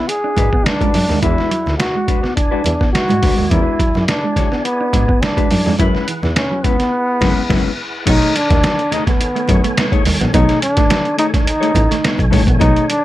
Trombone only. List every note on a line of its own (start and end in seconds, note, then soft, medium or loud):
0.08 0.67 G#4 loud
0.65 1.21 D4 loud
1.22 1.75 E4 loud
1.78 2.32 F#4 medium
2.36 2.90 D4 medium
2.93 3.52 F#4 loud
3.50 4.07 E4 loud
4.08 4.61 D4 loud
4.65 5.23 B3 loud
5.22 5.78 D4 loud
5.79 5.86 E4 medium
6.36 6.66 C#4 loud
6.65 7.79 B3 loud
8.08 8.38 D#4 loud
8.36 8.94 D4 loud
8.93 9.07 D#4 loud
9.07 10.02 B3 medium
10.34 10.60 D#4 loud
10.62 11.15 D4 loud
11.19 11.26 D#4 loud
11.35 12.29 D#4 loud
12.61 12.91 D#4 loud
12.89 13.04 D4 loud